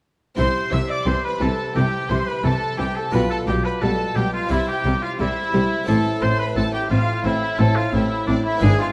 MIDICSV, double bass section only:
0, 0, Header, 1, 2, 480
1, 0, Start_track
1, 0, Key_signature, 0, "major"
1, 0, Tempo, 687285
1, 264, Time_signature, 4, 2, 24, 8
1, 6231, End_track
2, 0, Start_track
2, 0, Title_t, "Double bass section"
2, 0, Program_c, 0, 48
2, 265, Note_on_c, 0, 36, 87
2, 321, Note_off_c, 0, 36, 0
2, 503, Note_on_c, 0, 36, 78
2, 559, Note_off_c, 0, 36, 0
2, 744, Note_on_c, 0, 36, 78
2, 800, Note_off_c, 0, 36, 0
2, 984, Note_on_c, 0, 36, 73
2, 1040, Note_off_c, 0, 36, 0
2, 1224, Note_on_c, 0, 36, 77
2, 1279, Note_off_c, 0, 36, 0
2, 1465, Note_on_c, 0, 36, 76
2, 1521, Note_off_c, 0, 36, 0
2, 1707, Note_on_c, 0, 36, 77
2, 1763, Note_off_c, 0, 36, 0
2, 1947, Note_on_c, 0, 36, 74
2, 2003, Note_off_c, 0, 36, 0
2, 2186, Note_on_c, 0, 35, 90
2, 2242, Note_off_c, 0, 35, 0
2, 2428, Note_on_c, 0, 35, 80
2, 2484, Note_off_c, 0, 35, 0
2, 2665, Note_on_c, 0, 35, 77
2, 2721, Note_off_c, 0, 35, 0
2, 2906, Note_on_c, 0, 35, 77
2, 2961, Note_off_c, 0, 35, 0
2, 3147, Note_on_c, 0, 36, 81
2, 3203, Note_off_c, 0, 36, 0
2, 3385, Note_on_c, 0, 36, 81
2, 3441, Note_off_c, 0, 36, 0
2, 3626, Note_on_c, 0, 36, 83
2, 3682, Note_off_c, 0, 36, 0
2, 3866, Note_on_c, 0, 36, 75
2, 3922, Note_off_c, 0, 36, 0
2, 4107, Note_on_c, 0, 33, 93
2, 4163, Note_off_c, 0, 33, 0
2, 4345, Note_on_c, 0, 33, 85
2, 4401, Note_off_c, 0, 33, 0
2, 4585, Note_on_c, 0, 33, 81
2, 4640, Note_off_c, 0, 33, 0
2, 4821, Note_on_c, 0, 33, 81
2, 4877, Note_off_c, 0, 33, 0
2, 5062, Note_on_c, 0, 33, 74
2, 5118, Note_off_c, 0, 33, 0
2, 5303, Note_on_c, 0, 33, 89
2, 5358, Note_off_c, 0, 33, 0
2, 5542, Note_on_c, 0, 33, 89
2, 5597, Note_off_c, 0, 33, 0
2, 5781, Note_on_c, 0, 33, 80
2, 5837, Note_off_c, 0, 33, 0
2, 6021, Note_on_c, 0, 32, 98
2, 6077, Note_off_c, 0, 32, 0
2, 6231, End_track
0, 0, End_of_file